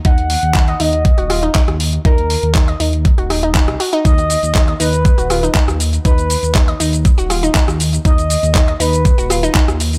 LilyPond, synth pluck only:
\new Staff \with { instrumentName = "Synth pluck" } { \time 4/4 \key ees \minor \tempo 4 = 120 ees'16 r8. ees'16 ees''16 ees'16 r8 ges'16 f'16 ees'16 ees'16 r8. | ees'16 r8. ees'16 ees''16 ees'16 r8 ges'16 ees'16 ees'16 ees'16 r16 ges'16 ees'16 | ees'16 r8. ees'16 ees''16 ees'16 r8 ges'16 f'16 ees'16 ees'16 r8. | ees'16 r8. ees'16 ees''16 ees'16 r8 ges'16 f'16 ees'16 ees'16 r8. |
ees'16 r8. ees'16 ees''16 ees'16 r8 ges'16 f'16 ees'16 ees'16 r8. | }